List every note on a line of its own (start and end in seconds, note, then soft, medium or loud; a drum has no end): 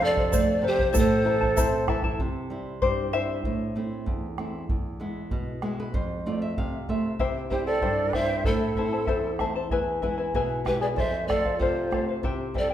0.00 0.90 F2 medium
0.00 0.31 C3 medium
0.00 0.17 A4 medium
0.00 0.44 A4 medium
0.00 0.17 C5 medium
0.00 0.16 F5 medium
0.05 0.65 D5 medium
0.17 0.32 C5 soft
0.17 0.32 F5 medium
0.17 bombo low medium
0.32 0.62 A3 medium
0.32 0.62 A4 medium
0.32 0.63 C5 medium
0.32 0.63 F5 medium
0.32 bombo low medium
0.32 shaker loud
0.62 0.92 C3 medium
0.62 0.79 A4 medium
0.62 0.79 C5 medium
0.62 0.78 F5 medium
0.67 0.94 G4 medium
0.67 0.95 C5 medium
0.79 0.91 C5 soft
0.79 0.94 F5 medium
0.79 bombo low medium
0.93 2.15 A2 medium
0.93 1.24 E4 medium
0.93 1.25 A4 medium
0.93 1.25 C5 medium
0.93 1.24 E5 medium
0.93 1.25 A5 medium
0.93 bombo low medium
0.93 shaker loud
0.98 1.86 A4 medium
0.98 1.86 C5 medium
1.25 1.56 E3 medium
1.25 1.41 E4 medium
1.25 1.40 A4 medium
1.25 1.40 E5 soft
1.25 1.40 A5 medium
1.41 1.56 E4 soft
1.41 1.56 A4 medium
1.41 1.56 A5 medium
1.41 bombo low medium
1.56 1.87 C4 medium
1.56 1.88 E4 medium
1.56 1.88 A4 medium
1.56 1.88 C5 medium
1.56 1.87 E5 medium
1.56 1.88 A5 medium
1.56 bombo low medium
1.56 shaker medium
1.87 2.18 E3 soft
1.87 2.03 E4 medium
1.87 2.03 A4 medium
1.87 2.03 E5 medium
1.87 2.02 A5 medium
1.87 bombo rim medium
1.87 bombo low medium
2.03 2.20 E4 soft
2.03 2.20 A4 medium
2.03 2.19 A5 medium
2.03 bombo low medium
2.19 2.80 C3 medium
2.19 bombo low medium
2.50 3.00 G3 soft
2.50 3.01 C4 soft
2.50 3.01 E4 soft
2.82 3.43 G2 medium
2.82 3.11 G4 medium
2.82 3.11 C5 medium
2.82 bombo low medium
3.13 3.38 G3 soft
3.13 3.38 C4 soft
3.13 3.39 E4 soft
3.13 4.35 C5 medium
3.13 4.34 E5 medium
3.13 bombo rim soft
3.44 4.05 A2 medium
3.44 bombo low medium
3.75 4.26 A3 soft
3.75 4.26 C4 soft
3.75 4.26 E4 soft
4.06 4.67 E2 medium
4.06 bombo low medium
4.38 4.63 A3 soft
4.38 4.63 C4 soft
4.38 4.64 E4 soft
4.38 bombo rim soft
4.69 5.30 E2 medium
4.69 bombo low medium
5.00 5.50 G#3 soft
5.00 5.51 B3 soft
5.00 5.51 E4 soft
5.31 5.92 B2 medium
5.31 bombo low medium
5.62 5.88 G#3 soft
5.62 5.88 B3 soft
5.62 5.88 E4 soft
5.62 5.77 G#4 medium
5.62 bombo rim soft
5.80 5.94 B4 medium
5.94 6.55 F2 medium
5.94 6.23 C5 medium
5.94 bombo low medium
6.26 6.76 A3 soft
6.26 6.76 C4 soft
6.26 6.76 F4 soft
6.26 6.41 D5 medium
6.42 6.56 E5 medium
6.57 7.18 C3 medium
6.57 6.87 F5 medium
6.57 bombo low medium
6.88 7.14 A3 soft
6.88 7.14 C4 soft
6.88 7.14 F4 soft
6.88 7.18 E5 medium
6.88 bombo low soft
7.19 7.81 C3 medium
7.19 7.50 E4 medium
7.19 7.51 G4 medium
7.19 7.50 C5 medium
7.19 7.49 E5 medium
7.19 7.50 G5 medium
7.19 bombo low medium
7.50 8.02 G3 soft
7.50 8.02 C4 soft
7.50 7.67 E4 soft
7.50 8.02 E4 soft
7.50 7.65 G4 medium
7.50 7.66 C5 medium
7.50 7.66 C5 soft
7.50 7.67 E5 soft
7.50 7.66 G5 medium
7.50 bombo low soft
7.66 7.82 E4 soft
7.66 8.16 A4 medium
7.66 7.81 C5 soft
7.66 8.16 D5 medium
7.66 7.81 G5 soft
7.82 8.44 G2 medium
7.82 8.13 E4 medium
7.82 8.14 G4 medium
7.82 8.13 C5 medium
7.82 8.12 E5 medium
7.82 8.14 G5 medium
7.82 bombo low medium
8.13 8.39 G3 soft
8.13 8.40 C4 soft
8.13 8.29 E4 soft
8.13 8.40 E4 soft
8.13 8.28 C5 medium
8.13 8.47 C5 medium
8.13 8.29 E5 soft
8.13 8.48 E5 medium
8.13 8.28 G5 medium
8.13 bombo rim soft
8.13 bombo low soft
8.29 8.45 E4 soft
8.29 8.45 C5 soft
8.29 8.45 G5 soft
8.44 9.07 A2 medium
8.44 8.76 E4 medium
8.44 9.40 E4 medium
8.44 8.76 A4 medium
8.44 9.40 A4 medium
8.44 8.76 C5 medium
8.44 8.76 E5 medium
8.44 8.77 A5 medium
8.44 bombo low medium
8.75 9.27 A3 soft
8.75 9.27 C4 soft
8.75 8.92 E4 soft
8.75 9.28 E4 soft
8.75 8.92 C5 medium
8.75 8.93 E5 soft
8.75 8.91 A5 medium
8.75 bombo low soft
8.93 9.07 E4 soft
8.93 9.07 C5 soft
8.93 9.07 A5 soft
9.07 9.70 E2 medium
9.07 9.39 E4 medium
9.07 9.39 A4 medium
9.07 9.39 C5 medium
9.07 9.38 E5 medium
9.07 9.40 A5 medium
9.07 bombo low medium
9.39 9.65 A3 soft
9.39 9.65 C4 soft
9.39 9.55 E4 medium
9.39 9.65 E4 soft
9.39 9.55 C5 medium
9.39 9.55 E5 medium
9.39 9.54 A5 medium
9.39 bombo rim soft
9.39 bombo low soft
9.55 9.70 E4 soft
9.55 9.71 C5 medium
9.55 9.71 A5 medium
9.70 10.33 E2 medium
9.70 10.01 E4 medium
9.70 10.03 G#4 medium
9.70 10.02 B4 medium
9.70 10.01 E5 medium
9.70 10.02 G#5 medium
9.70 bombo low medium
10.02 10.53 G#3 soft
10.02 10.53 B3 soft
10.02 10.18 E4 soft
10.02 10.53 E4 soft
10.02 10.17 B4 medium
10.02 10.18 E5 soft
10.02 10.17 G#5 medium
10.02 bombo low soft
10.18 10.34 E4 soft
10.18 10.34 B4 soft
10.18 10.34 G#5 medium
10.34 10.95 B2 medium
10.34 10.65 E4 medium
10.34 10.66 G#4 medium
10.34 10.66 B4 medium
10.34 10.65 E5 medium
10.34 10.66 G#5 medium
10.34 bombo low medium
10.65 10.90 G#3 soft
10.65 10.90 B3 soft
10.65 10.91 E4 soft
10.65 10.82 E4 medium
10.65 10.80 G4 medium
10.65 10.81 B4 medium
10.65 10.81 B4 soft
10.65 10.82 E5 medium
10.65 10.80 G#5 medium
10.65 bombo rim soft
10.65 bombo low soft
10.80 10.98 E4 soft
10.80 10.86 G#4 medium
10.80 10.97 B4 soft
10.80 10.88 D5 medium
10.80 10.97 G#5 soft
10.96 11.58 F2 medium
10.96 11.28 A4 medium
10.96 11.29 C5 medium
10.96 11.01 D5 medium
10.96 11.27 E5 medium
10.96 bombo low medium
11.00 11.26 C5 medium
11.27 11.78 A3 soft
11.27 11.79 C4 soft
11.27 11.79 F4 soft
11.27 11.57 A4 medium
11.27 11.45 A4 soft
11.27 11.45 C5 soft
11.27 11.57 D5 medium
11.27 11.44 F5 soft
11.27 bombo rim soft
11.27 bombo low medium
11.45 11.61 C5 soft
11.45 11.60 F5 soft
11.45 bombo low soft
11.58 12.21 C3 medium
11.58 12.03 F4 medium
11.58 11.92 A4 medium
11.58 12.04 C5 medium
11.58 11.93 C5 medium
11.58 bombo low medium
11.62 11.93 F5 medium
11.91 12.16 A3 soft
11.91 12.17 C4 soft
11.91 12.17 F4 soft
11.91 12.08 A4 soft
11.91 12.08 C5 soft
11.91 12.07 F5 medium
11.91 bombo rim soft
11.91 bombo low soft
12.09 12.23 C5 soft
12.09 12.24 F5 soft
12.23 12.74 C3 medium
12.23 12.55 E4 medium
12.23 12.55 G4 medium
12.23 12.55 C5 medium
12.23 12.54 E5 medium
12.23 12.55 G5 medium
12.23 bombo low medium
12.54 12.74 G3 soft
12.54 12.74 C4 soft
12.54 12.74 E4 soft
12.54 12.71 E4 soft
12.54 12.70 C5 medium
12.54 12.70 E5 soft
12.54 12.69 G5 medium
12.54 bombo low soft
12.58 12.70 A4 medium
12.58 12.71 D5 medium
12.70 12.74 G5 soft